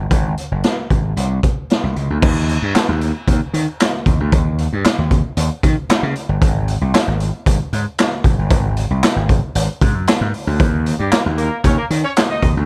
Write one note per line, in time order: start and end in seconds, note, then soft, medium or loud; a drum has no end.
0.11 0.33 G#1 loud
0.11 kick loud
0.11 closed hi-hat medium
0.37 closed hi-hat medium
0.52 0.62 F#1 medium
0.64 snare loud
0.64 closed hi-hat medium
0.90 1.13 G#1 medium
0.90 kick medium
0.90 closed hi-hat medium
1.16 1.39 C2 medium
1.16 closed hi-hat medium
1.43 kick medium
1.43 closed hi-hat medium
1.70 snare loud
1.70 closed hi-hat medium
1.84 1.94 C2 medium
1.96 2.08 C#2 medium
1.96 closed hi-hat medium
2.10 2.21 D2 medium
2.22 2.56 D#2 loud
2.22 kick loud
2.22 crash loud
2.49 closed hi-hat medium
2.62 2.73 G2 medium
2.75 muted slap bass stroke soft
2.75 snare loud
2.75 clap medium
2.75 closed hi-hat loud
2.89 3.11 D#2 medium
3.01 closed hi-hat medium
3.28 3.39 D#2 loud
3.28 kick medium
3.28 closed hi-hat medium
3.54 3.65 D#3 loud
3.54 closed hi-hat medium
3.80 snare loud
3.80 clap loud
3.80 closed hi-hat loud
4.06 4.18 D#2 loud
4.06 kick medium
4.06 closed hi-hat medium
4.20 4.31 D2 loud
4.32 4.66 D#2 loud
4.32 kick loud
4.32 closed hi-hat loud
4.58 closed hi-hat medium
4.73 4.83 G2 medium
4.85 muted slap bass stroke soft
4.85 snare loud
4.85 clap loud
4.85 closed hi-hat loud
4.99 5.21 D#2 medium
5.11 kick medium
5.11 closed hi-hat medium
5.37 5.49 D#2 loud
5.37 closed hi-hat loud
5.63 5.75 D#3 medium
5.63 kick medium
5.63 closed hi-hat medium
5.89 muted slap bass stroke soft
5.89 snare loud
5.89 clap loud
5.89 closed hi-hat medium
6.03 6.13 C#3 medium
6.16 closed hi-hat medium
6.29 6.39 G1 loud
6.42 6.76 G#1 loud
6.42 kick loud
6.42 closed hi-hat loud
6.68 closed hi-hat medium
6.81 6.92 C2 loud
6.94 muted slap bass stroke soft
6.94 snare loud
6.94 clap medium
6.94 closed hi-hat loud
7.08 7.30 G#1 medium
7.20 closed hi-hat medium
7.46 7.58 G#1 loud
7.46 kick loud
7.46 closed hi-hat loud
7.73 7.84 G#2 medium
7.73 closed hi-hat medium
7.98 snare loud
7.98 clap loud
7.98 closed hi-hat medium
8.24 8.36 G#1 medium
8.24 kick medium
8.24 closed hi-hat medium
8.39 8.50 G1 medium
8.50 8.85 G#1 loud
8.50 kick loud
8.50 closed hi-hat loud
8.77 closed hi-hat medium
8.91 9.01 C2 loud
9.03 muted slap bass stroke soft
9.03 snare loud
9.03 clap loud
9.03 closed hi-hat loud
9.16 9.39 G#1 medium
9.29 kick medium
9.29 closed hi-hat medium
9.55 9.67 G#1 medium
9.55 closed hi-hat loud
9.81 9.95 G#2 medium
9.81 kick medium
9.81 closed hi-hat medium
9.95 10.06 F#2 loud
10.07 snare loud
10.07 clap loud
10.07 closed hi-hat loud
10.21 10.32 G#2 loud
10.34 open hi-hat medium
10.47 10.60 D2 loud
10.60 10.94 D#2 loud
10.60 kick loud
10.60 closed hi-hat medium
10.86 closed hi-hat medium
10.99 11.10 G2 medium
10.99 11.09 G3 medium
10.99 11.09 G4 medium
11.11 11.20 A#3 medium
11.11 11.20 A#4 medium
11.11 muted slap bass stroke soft
11.11 snare loud
11.11 clap loud
11.11 closed hi-hat loud
11.26 11.48 D#2 medium
11.37 11.59 A#3 loud
11.37 11.59 A#4 loud
11.37 closed hi-hat medium
11.64 11.76 D#2 loud
11.64 11.75 C#4 medium
11.64 11.75 C#5 loud
11.64 kick medium
11.64 closed hi-hat medium
11.78 11.85 A#3 medium
11.78 11.85 A#4 medium
11.90 12.02 D#3 loud
11.90 closed hi-hat medium
12.04 12.11 C#4 medium
12.04 12.11 C#5 loud
12.16 snare loud
12.16 clap loud
12.16 closed hi-hat loud
12.30 12.51 D#4 medium
12.30 12.51 D#5 loud
12.42 12.54 D#2 medium
12.42 kick medium
12.42 closed hi-hat medium
12.57 12.65 D2 loud